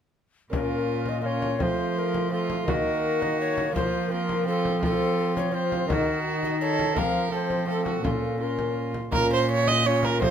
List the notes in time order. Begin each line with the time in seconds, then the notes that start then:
0.50 A#2 A#3 C#4 F4 A#4, frame drum
0.54 F4
1.06 D#5, frame drum
1.22 A#3 C#4 F4
1.26 C#5
1.42 frame drum
1.59 F3 A3 C4 F4 C5, frame drum
1.63 F4
1.99 A#4
2.14 frame drum
2.29 A3 C4 F4
2.33 F4 A4
2.50 frame drum
2.65 D#3 A#3 D#4 F#4 A#4, frame drum
2.70 F#4
3.22 D#5, frame drum
3.41 C#5
3.58 frame drum
3.72 F3 A#3 C4 F4 C5
3.76 F3 F4, frame drum
4.08 A#3 C4 F4 A#4
4.12 F4
4.29 frame drum
4.43 C4 F4
4.48 A4
4.65 frame drum
4.79 C4 F4, frame drum
4.85 A4
5.37 C#5, frame drum
5.51 C4 F4 C5
5.72 frame drum
5.87 D#3 A#3 D#4 F#4 A#4, frame drum
5.92 F#4
6.43 D#5, frame drum
6.61 A4 C#5
6.79 frame drum
6.93 F3 A#3 C4 F4 F5, frame drum
6.98 A#4
7.28 A3 C4 F4 A4
7.33 C5
7.50 frame drum
7.65 A3 C4 F4 A4
7.69 A4
7.86 F#4, frame drum
8.01 A#2 A#3 C#4 F4 A4, frame drum
8.38 A#3 C#4 F4
8.43 A#4
8.59 frame drum
8.94 frame drum
9.11 A#2 A#3 C#4 F4 A#4, frame drum
9.16 F4
9.33 C5
9.51 C#5
9.68 D#5, frame drum
9.86 C#4 F4 C#5
10.03 A#4, frame drum
10.19 F3 A3 C4 F4 C5, frame drum
10.23 F4